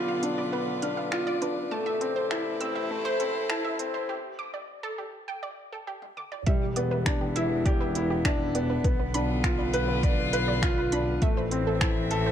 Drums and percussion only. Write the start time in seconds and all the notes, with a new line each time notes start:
0.23 closed hi-hat
0.82 closed hi-hat
1.12 finger snap
1.42 closed hi-hat
2.01 closed hi-hat
2.31 finger snap
2.61 closed hi-hat
3.20 closed hi-hat
3.50 finger snap
3.79 closed hi-hat
6.02 high tom
6.17 mid tom
6.32 mid tom
6.46 kick, closed hi-hat
6.76 closed hi-hat
7.06 finger snap, kick, closed hi-hat
7.36 closed hi-hat
7.66 kick, closed hi-hat
7.95 closed hi-hat
8.25 finger snap, kick, closed hi-hat
8.55 closed hi-hat
8.84 kick, closed hi-hat
9.14 closed hi-hat
9.44 finger snap, kick, closed hi-hat
9.74 closed hi-hat
10.03 kick, closed hi-hat
10.33 closed hi-hat
10.63 finger snap, kick, closed hi-hat
10.92 closed hi-hat
11.22 kick, closed hi-hat
11.51 closed hi-hat
11.81 finger snap, kick, closed hi-hat
12.11 closed hi-hat